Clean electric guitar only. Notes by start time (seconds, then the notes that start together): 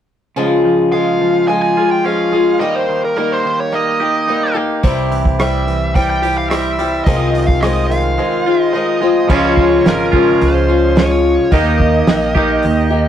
0.36 C#3
0.65 F3
0.93 G#3
1.21 F3
1.49 G#3
1.77 F4
2.04 C#4
2.32 G#3
2.60 D#3
2.89 D#3
3.17 A#3
3.45 D#3
3.73 A#3
4.00 G4
4.28 D#4
4.57 A#3
4.83 C3
5.11 E3
5.39 G3
5.67 E3
5.96 G3
6.23 G4
6.50 C4
6.79 G3
7.07 C3
7.33 D#3
7.61 G#3
7.90 D#3
8.18 G#3
8.46 F4
8.73 D#4
9.01 G#3
9.27 C#3 F3 G#3 C#4 F4
10.12 C#3 F3 G#3 C#4 F4
11.51 D#3 A#3 D#4 G4
12.35 D#3 A#3 D#4 G4